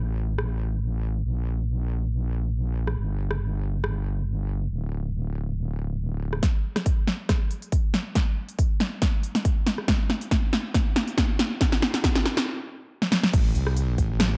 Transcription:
Already playing: A1
0.38 cross-stick
1.25 A#1
2.87 cross-stick
2.97 G1
3.31 cross-stick
3.84 cross-stick
4.70 D1
6.33 cross-stick
6.43 kick, snare, closed hi-hat
6.76 cross-stick, snare, closed hi-hat
6.86 kick, closed hi-hat
7.07 snare
7.29 kick, cross-stick, snare, closed hi-hat
7.51 closed hi-hat
7.62 closed hi-hat
7.72 kick, closed hi-hat
7.94 snare, closed hi-hat
8.15 kick, snare, closed hi-hat
8.49 closed hi-hat
8.59 kick, closed hi-hat
8.80 snare
9.02 kick, snare, closed hi-hat
9.23 closed hi-hat
9.35 snare, closed hi-hat
9.45 kick, closed hi-hat
9.67 snare, closed hi-hat
9.78 cross-stick
9.88 kick, snare, closed hi-hat
10.10 snare
10.21 closed hi-hat
10.31 kick, snare, closed hi-hat
10.53 snare
10.74 kick, snare, closed hi-hat
10.96 snare, closed hi-hat
11.08 closed hi-hat
11.18 kick, snare, closed hi-hat
11.39 snare, closed hi-hat
11.61 kick, snare, closed hi-hat
11.72 snare
11.82 snare
11.94 snare, closed hi-hat
12.04 kick, snare, closed hi-hat
12.15 snare
12.26 snare
12.37 snare
13.02 snare
13.12 snare
13.23 snare
13.33 A1, kick, closed hi-hat, crash
13.55 C2, closed hi-hat
13.67 cross-stick
13.77 closed hi-hat
13.98 A1, kick, closed hi-hat
14.20 cross-stick, snare, closed hi-hat

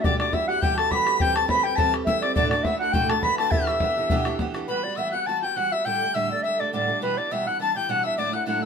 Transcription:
Already playing: E4 F#4 A4 B4
0.00 E3 D4 D5 E5
0.04 G3 B3 G4 D6, bodhran
0.19 G3 B3 D4 G4 D5 D6, bodhran
0.33 E3 G3 B3 E4 G4 E5 E6, bodhran
0.48 G3 B3 F#4 G4 F#5 F#6
0.62 E3 G3 B3 G4 G5 G6, bodhran
0.76 G3 B3 G4 A4 A5 A6, bodhran
0.91 E3 G3 B3 G4 B4 D6 B6, bodhran
0.95 B5
1.06 G3 B3 G4, bodhran
1.19 E3 G3 C4 G4 G5 G6, bodhran
1.34 G3 C4 G4 A4 A5 A6, bodhran
1.48 E3 G3 C4 G4 B4 B5 B6, bodhran
1.63 G3 C4 G4 G5 G6
1.76 E3 G3 C4 G4 A4 A5 A6 B6, bodhran
1.93 G3 C4 G4, bodhran
2.05 E3 G3 C4 E4 G4 E5 E6, bodhran
2.21 G3 C4 D4 G4 D5 D6, bodhran
2.35 D2 A2 D3 A3 D4 F#4 D5 D6, bodhran
2.49 D4 F#4 D5 D6, bodhran
2.53 D3 A3 D4
2.63 D3 A3 D4 E4 F#4 E5 E6, bodhran
2.78 D3 A3 D4 F#4 F#5 F#6
2.92 D2 A2 D3 A3 D4 F#4 G4 G5 G6, bodhran
3.09 D3 A3 D4 F#4 A4 A5 A6, bodhran
3.22 D3 A3 D4 F#4 B4 B5 B6, bodhran
3.38 D3 A3 D4 F#4 A4 A5 A6, bodhran
3.51 E2 B2 E3 B3 D4 E4 G4 E5 E6, bodhran
3.67 E3 B3 D4 G4, bodhran
3.80 E3 B3 D4 G4, bodhran
3.97 E3 B3 D4 G4
4.10 E2 B2 E3 B3 D4 G4, bodhran
4.25 E3 B3 D4 G4, bodhran
4.39 E3 B3 D4 G4, bodhran
4.54 E3 B3 D4 G4, bodhran
4.67 E3 G3 B3 F#4 B4 B5
4.83 G3 B3 F#4 D5
4.96 E3 G3 B3 F#4 E5 E6
5.11 G3 B3 F#4 F#5 F#6
5.26 E3 G3 B3 F#4 A5 A6
5.42 G3 B3 F#4 G5 G6
5.56 E3 G3 B3 F#4 F#5 F#6
5.72 G3 B3 F#4 E5 E6
5.85 D2 A2 D3 G3 A3 D4 G5 G6
6.02 D3 G3 A3 D4
6.14 D2 A2 D3 G3 A3 D4 E5 E6
6.30 D3 G3 A3 D4 D5
6.43 D3 G3 A3 D4 E5 E6
6.59 D3 G3 A3 D4 D5 D6
6.73 D2 A2 D3 G3 A3 D4 D5 D6
6.87 D3 G3 A3 D4
7.01 E2 B2 E3 G3 B3 D4 B4 B5
7.16 E3 G3 B3 D4 D5 D6
7.30 E2 B2 E3 G3 B3 D4 E5 E6
7.46 E3 G3 B3 D4 F#5 F#6
7.59 E3 G3 B3 D4 A5 A6
7.74 E3 G3 B3 D4 G5 G6
7.88 E2 B2 E3 G3 B3 D4 F#5 F#6
8.03 E3 G3 B3 D4 E5 E6
8.17 D2 A2 F#3 A3 D4 E4 D5 D6
8.32 F#3 A3 D4 E4 F#5 F#6
8.46 D2 A2 F#3 A3 D4 E4 F#5 F#6
8.61 D4 E4 E6

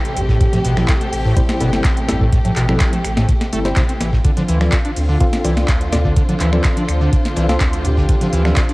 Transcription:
Already playing: A1 C3 A3 C4 G4 A4 G5
0.05 closed hi-hat
0.17 A1 A2 G4, open hi-hat, ride
0.29 A2, kick, snare
0.41 A2, kick, closed hi-hat, ride
0.53 A2, snare, closed hi-hat, low conga
0.64 A1 B2, open hi-hat, ride
0.77 B2 G3 C4 E4 A4, finger snap, snare, low conga
0.88 finger snap, kick, snare, clap, closed hi-hat, ride
1.01 A3, closed hi-hat
1.13 A1, open hi-hat
1.25 A2
1.37 A2 G3 C4 E4 C5, kick, closed hi-hat, ride
1.49 snare, closed hi-hat
1.60 G1 B2 G3 C4 E4 A4, open hi-hat, ride
1.73 snare, closed hi-hat
1.84 A1, kick, snare, clap, closed hi-hat, ride
1.97 closed hi-hat
2.09 A1 A2 G3 C4 E4 A4, snare, open hi-hat, ride
2.21 A2, kick
2.33 A2, kick, closed hi-hat, ride
2.45 A2, closed hi-hat, low conga
2.56 A1 B2, clap, open hi-hat, ride
2.69 G3 C4 E4 A4, finger snap, low conga
2.80 finger snap, kick, snare, clap, closed hi-hat, ride
2.93 A3, closed hi-hat, low conga
3.05 A1, finger snap, open hi-hat, ride
3.17 A2, snare, closed hi-hat
3.29 kick, closed hi-hat, ride
3.41 snare, closed hi-hat
3.52 G1 G3 A3 C4 E4 A4, open hi-hat, ride
3.65 G3 C4 E4 C5, snare, closed hi-hat
3.76 C3, kick, snare, clap, closed hi-hat, ride
3.89 C4, closed hi-hat
4.01 A1 E3, snare, open hi-hat, ride
4.13 A2, kick, snare
4.24 D3 C4 D4 F4, kick, closed hi-hat, ride
4.37 D3, snare, closed hi-hat, low conga
4.48 D2 E3, open hi-hat, ride
4.61 C4 F4 A4 D5, finger snap, snare, low conga
4.72 finger snap, kick, snare, clap, closed hi-hat, ride
4.85 D4, closed hi-hat
4.93 D2 C5, open hi-hat
4.97 open hi-hat
5.09 D3
5.15 F5
5.21 D3 C4 F4 A4 F5, kick, closed hi-hat, ride
5.33 snare, closed hi-hat
5.44 C2 E3 C4 F4 A4 D5, open hi-hat, ride
5.57 snare, closed hi-hat
5.68 D2, kick, snare, clap, closed hi-hat, ride
5.81 closed hi-hat
5.92 D2 D3 C4 F4 A4 D5, snare, open hi-hat, ride
6.05 D3, kick
6.17 D3, kick, closed hi-hat, ride
6.29 D3, closed hi-hat, low conga
6.40 D2 E3, clap, open hi-hat, ride
6.53 E3 C4 F4 A4 D5, finger snap, low conga
6.64 finger snap, kick, snare, clap, closed hi-hat, ride
6.77 D4, closed hi-hat, low conga
6.88 D2, finger snap, open hi-hat, ride
7.01 D3
7.13 D3, kick, closed hi-hat, ride
7.25 snare, closed hi-hat
7.36 C2 E3 C4 F4 A4 D5, open hi-hat, ride
7.49 C4 F4 A4 F5, snare, closed hi-hat
7.60 D2, kick, snare, clap, closed hi-hat, ride
7.73 closed hi-hat
7.84 D2 D3 G4, open hi-hat, ride
7.97 D3, kick, snare
8.09 D3, kick, closed hi-hat, ride
8.21 D3, snare, closed hi-hat, low conga
8.33 D2 E3, open hi-hat, ride
8.45 E3 C4 F4 A4 D5, finger snap, snare, low conga
8.56 finger snap, kick, snare, clap, closed hi-hat, ride
8.69 D4, closed hi-hat

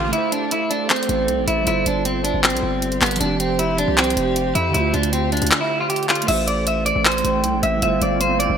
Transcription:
Already playing: A1 D3 A3 F4
0.08 A3
0.13 E4 C6, closed hi-hat
0.18 C5
0.32 D4, closed hi-hat
0.51 E4, closed hi-hat
0.70 D4, closed hi-hat
0.90 C4, clap, closed hi-hat
0.96 closed hi-hat
1.03 A3, closed hi-hat
1.09 A1 E4 C5, closed hi-hat
1.28 C2, closed hi-hat
1.38 A1
1.48 A1 E4, closed hi-hat
1.62 G3
1.67 G1 E4 F4 G4, closed hi-hat
1.72 C5
1.86 G1 D4, closed hi-hat
2.05 C4, closed hi-hat
2.24 D4, closed hi-hat
2.34 G1
2.43 C4, clap, closed hi-hat
2.50 B1, closed hi-hat
2.57 closed hi-hat
2.63 G1
2.82 closed hi-hat
2.92 closed hi-hat
3.01 G1 B3, clap, closed hi-hat, open hi-hat
3.06 closed hi-hat
3.11 closed hi-hat
3.16 F3, closed hi-hat
3.20 F1 C4 D4 F5, closed hi-hat
3.26 G4
3.40 C4, closed hi-hat
3.59 E4, closed hi-hat
3.78 D4, closed hi-hat
3.88 C2
3.98 C4, clap, closed hi-hat
4.04 closed hi-hat
4.10 closed hi-hat
4.17 F1, closed hi-hat
4.36 closed hi-hat
4.55 F2 E4, closed hi-hat
4.69 D3
4.74 D2 A3 E4, closed hi-hat
4.79 F4
4.93 D2 D4, closed hi-hat
5.03 closed hi-hat
5.13 C4, closed hi-hat
5.32 D4, closed hi-hat
5.37 closed hi-hat
5.42 D2, closed hi-hat
5.47 closed hi-hat
5.51 clap, closed hi-hat
5.61 E4
5.81 F4
5.90 G4, closed hi-hat
5.96 closed hi-hat
6.03 closed hi-hat
6.09 F4, clap, closed hi-hat
6.15 closed hi-hat
6.22 A3, closed hi-hat
6.28 A1 C4 E4 E5, closed hi-hat, crash
6.33 C5
6.48 D5, closed hi-hat
6.67 E5, closed hi-hat
6.86 D5, closed hi-hat
6.96 A1
7.05 C5, clap, closed hi-hat
7.12 closed hi-hat
7.18 A3, closed hi-hat
7.24 A1 E4 C5 G5, closed hi-hat
7.44 C2, closed hi-hat
7.53 A1
7.63 A1 E5, closed hi-hat
7.77 G3
7.82 G1 G3 F4 E5 F5, closed hi-hat
7.87 C5
8.01 G1 D5, closed hi-hat
8.21 C5, closed hi-hat
8.40 D5, closed hi-hat
8.50 G1

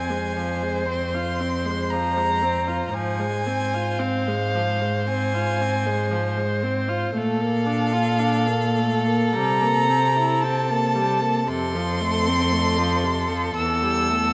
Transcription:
Already playing: F2 C4 C5 G#5
0.10 G#3
0.37 F3
0.63 G#3
0.88 C4 C6
1.14 F4
1.40 C4
1.66 G#3
1.91 F3 A#5
2.16 G#3
2.42 C4
2.68 F4
2.88 A#5
2.93 G#2 F3 C5 G#5
3.19 G#3
3.46 C4
3.74 F4
3.99 C4 F5
4.28 G#3
4.56 F3
4.81 G#3
5.07 C4 G#5
5.34 F4
5.61 C4
5.86 G#3
6.11 F3
6.37 G#3
6.63 C4
6.89 F4
7.14 A#2 A3 A4 F5
7.41 A#3
7.66 D4
7.93 F4
8.19 D4
8.47 A#3
8.77 A3
9.07 A#3
9.33 C3 G3 A#5
9.62 A#3
9.89 C4
10.16 E4
10.41 C4 A5
10.70 A#3
10.95 G3
11.21 A#3
11.47 F2 C3 A4 C6
11.75 F3
12.01 A3
12.28 C4
12.53 A3
12.77 F3
13.03 C3
13.29 F3
13.56 E2 E3 E6
13.83 G3
14.10 A3

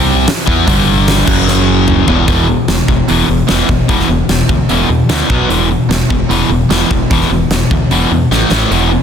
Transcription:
Already playing: C2 C3 G3 C4
0.27 muted distorted electric guitar stroke, muted fingered electric bass stroke, muted overdriven electric guitar stroke, snare, open hi-hat
0.46 E2 E3 B3 E4, kick
0.66 G1 G2 D3 G3, kick, open hi-hat
1.08 snare, open hi-hat
1.27 F#1 F#2 C#3 F#3, kick, crash
1.48 snare
1.88 mid tom
2.07 E1 E2 B2 E3, floor tom
2.27 E1 E2 B2 E3, kick, open hi-hat
2.48 E2 B2
2.68 E1 E2 B2, snare, open hi-hat
2.88 E1 E2 B2, kick
3.08 E1 E2 B2 E3, open hi-hat
3.28 E1 E2 B2
3.48 E1 E2 B2 E3, snare, open hi-hat
3.68 E1 E2 B2, kick
3.88 E1 E2 B2 E3, kick, open hi-hat
4.00 snare
4.09 E1 E2 B2
4.28 E1 E2 B2, snare, open hi-hat
4.49 D2 E2 B2, kick
4.69 E1 E2 B2 E3, open hi-hat
4.89 E2 B2
5.09 D2 E2 B2 E3, snare, open hi-hat
5.30 B1 B2 F#3 B3, kick
5.49 E1 E2 B2 E3, open hi-hat
5.71 E2 B2
5.89 E1 E2 B2, snare, open hi-hat
6.10 E1 E2 B2, kick
6.29 E1 E2 B2 E3, open hi-hat
6.50 E1 E2 B2
6.69 E1 E2 B2 E3, snare, open hi-hat
6.91 E1 E2 B2, kick
7.11 E1 E2 B2 E3, kick, open hi-hat
7.21 snare
7.30 E1 E2 B2
7.49 E1 E2 B2, snare, open hi-hat
7.71 D2 E2 B2, kick
7.91 E1 E2 B2 E3, open hi-hat
8.11 E2 B2
8.31 A1 A2 E3 A3, snare
8.51 A1 A2 E3 A3, snare
8.70 E1 E2 B2 E3, open hi-hat
8.91 E2 B2

